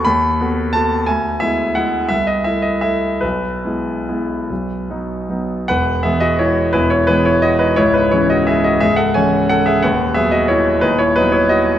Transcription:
X:1
M:3/4
L:1/8
Q:1/4=173
K:E
V:1 name="Grand piano"
b4 a2 | g2 e2 f2 | e d e d e2 | B6- |
B4- B z | [Bf]2 [Ge] [Fd] [Ec]2 | [EB] [Ec] [EB] [Ec] [Fd] [DB] | [Ec] [DB] [Ec] [Fd] [Ge] [Fd] |
[Ge] [Af] [cg]2 [Af] [Ge] | [Bf]2 [Ge] [Fd] [Ec]2 | [DB] [Ec] [DB] [Ec] [Fd]2 |]
V:2 name="Grand piano" clef=bass
D,,2 [A,B,F]2 [A,B,F]2 | =D,,2 [G,B,E]2 [G,B,E]2 | =C,,2 [A,E]2 [A,E]2 | B,,,2 [G,B,E]2 [G,B,E]2 |
B,,,2 [F,B,D]2 [F,B,D]2 | [E,,,E,,]2 [E,G,B,]4 | [E,,,E,,]2 [E,G,B,]4 | [C,,,C,,]2 [E,G,C]4 |
[C,,,C,,]2 [E,G,C]4 | [D,,,D,,]2 [F,B,]4 | [D,,,D,,]2 [F,B,]4 |]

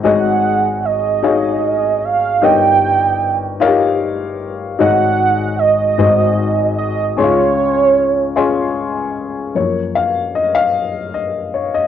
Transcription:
X:1
M:6/8
L:1/16
Q:3/8=50
K:Abmix
V:1 name="Soft synth lead"
g4 e6 f2 | =g8 z4 | g4 e6 e2 | d8 z4 |
z12 |]
V:2 name="Upright piano"
[EGAde]4 z2 [EGAdf]4 z2 | [E=GBde]4 z2 [EFGBdf]4 z2 | [EGAde]4 z2 [EGAce]4 z2 | [DEFAdc']4 z2 [DFAdc']4 z2 |
d2 f2 e f3 e2 d e |]
V:3 name="Upright piano" clef=bass
[A,,,A,,]12 | [=G,,,=G,,]12 | [A,,,A,,]6 [A,,,A,,]6 | [D,,D,]12 |
[G,,F,B,]2 z8 z2 |]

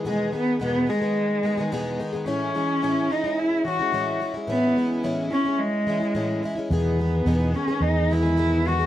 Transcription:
X:1
M:4/4
L:1/16
Q:1/4=108
K:E
V:1 name="Cello"
G,2 B,2 B,2 G,8 z2 | C6 D2 E2 F4 z2 | B,4 z2 C2 G,6 z2 | B,6 C2 D2 E4 F2 |]
V:2 name="Twelve-string acoustic guitar" clef=bass
[E,,B,,D,G,B,G]2 [D,G,B,G]2 [E,,B,,D,G,B,G]2 [D,G,B,G] [D,G,B,G]3 [D,G,B,G] [D,G,B,G] [E,,B,,D,G,B,G]2 [D,G,B,G] [D,G,B,G] | [A,,E,G,CE]2 [E,G,CE]2 [A,,E,G,CE]2 [E,G,CE] [G,CE]3 [E,G,CE] [G,CE] [A,,E,G,CE]2 [E,G,CE] [G,CE] | [A,,E,G,CE]2 [E,G,CE]2 [A,,E,G,CE]2 [E,G,CE] [G,CE]3 [E,G,CE] [G,CE] [A,,E,G,CE]2 [E,G,CE] [G,CE] | [E,,B,,D,G,B,G]2 [D,G,B,G]2 [E,,B,,D,G,B,G]2 [D,G,B,G] [D,G,B,G]3 [D,G,B,G] [D,G,B,G] [E,,B,,D,G,B,G]2 [D,G,B,G] [D,G,B,G] |]
V:3 name="Fretless electric bass" clef=bass
z16 | z16 | z16 | E,,4 E,,2 z2 E,,8 |]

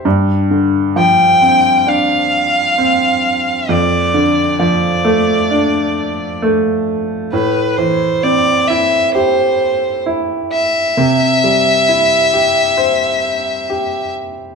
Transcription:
X:1
M:4/4
L:1/8
Q:1/4=66
K:Am
V:1 name="Violin"
z2 g2 f4 | d2 d4 z2 | B c d e c2 z e- | e6- e z |]
V:2 name="Upright piano"
G,, D, F, C D2 C2 | F,, D, F, A, D2 A,2 | A,, E, C E G2 E2 | C, G, E G c2 G2 |]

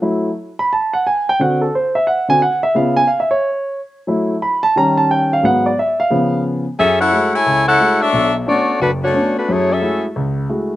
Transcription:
X:1
M:4/4
L:1/8
Q:"Swing" 1/4=178
K:F#m
V:1 name="Saxophone section"
z8 | z8 | z8 | z8 |
z8 | [CGAe] [EAcf]2 [EAcg]2 [EAcf]2 [DAce]- | [DAce] z [A,Fcd]2 [A,DFB] [A,DFc]2 [A,DFB] | [A,EGc] [CGAe]2 z4 z |]
V:2 name="Grand piano"
z3 b a f g =g | f A =c e f g f e | ^e g (3e =e c- c2 z2 | z2 b a ^a =a =g ^e |
f d e ^e3 z2 | z8 | z8 | z8 |]
V:3 name="Grand piano"
[F,A,E] z6 z | [D,=CF] z4 [D,CF] z2 | [C,B,^E] z6 z | [F,A,E] z3 [^D,=G,C]4 |
[G,,F,B,] z3 [C,^E,B,]3 z | F,,2 [G,A,EF] z C,,2 [G,A,EF] z | [B,,,B,,]2 [A,B,CD] z F,,,2 [A,B,CD] z | [F,,F,]2 [G,A,EF] z C,,2 [G,A,EF] z |]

